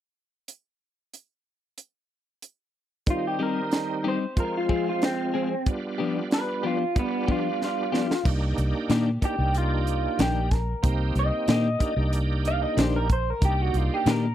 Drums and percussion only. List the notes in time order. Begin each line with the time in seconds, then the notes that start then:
0.48 closed hi-hat
1.14 closed hi-hat
1.78 closed hi-hat
2.42 closed hi-hat
3.06 kick, closed hi-hat
3.71 snare, closed hi-hat
4.37 kick, closed hi-hat
4.69 kick
5.02 snare, closed hi-hat
5.66 kick, closed hi-hat
6.31 snare, closed hi-hat
6.96 kick, closed hi-hat
7.28 kick
7.62 snare
7.94 snare
8.11 snare
8.25 kick, crash
8.58 closed hi-hat
8.90 snare, closed hi-hat
9.22 kick, closed hi-hat
9.54 closed hi-hat
9.87 closed hi-hat
10.19 snare, closed hi-hat
10.51 kick, snare, closed hi-hat
10.83 kick, closed hi-hat
11.15 closed hi-hat
11.48 snare, closed hi-hat
11.80 kick, closed hi-hat
12.13 closed hi-hat
12.45 closed hi-hat
12.78 snare, closed hi-hat
13.10 kick, closed hi-hat
13.42 kick, closed hi-hat
13.74 closed hi-hat
14.06 snare, closed hi-hat